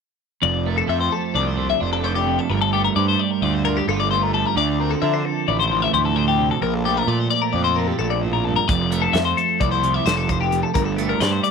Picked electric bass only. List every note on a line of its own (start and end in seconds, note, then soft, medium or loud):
0.43 0.81 F1 medium
0.89 1.08 F2 loud
1.35 1.73 C2 medium
1.81 2.38 F1 medium
2.50 2.88 G1 medium
2.96 3.15 G2 loud
3.42 3.80 D2 medium
3.87 4.44 G1 medium
4.56 4.94 D2 medium
5.02 5.21 D3 medium
5.48 5.86 A1 medium
5.93 6.50 D2 loud
6.62 7.00 A#1 medium
7.07 7.27 A#2 loud
7.54 7.92 F2 medium
7.99 8.56 A#1 medium
8.69 9.07 F1 medium
9.14 9.33 F2 medium
9.61 9.98 C2 medium
10.06 10.62 F1 medium
10.75 11.13 G1 medium
11.20 11.39 G2 medium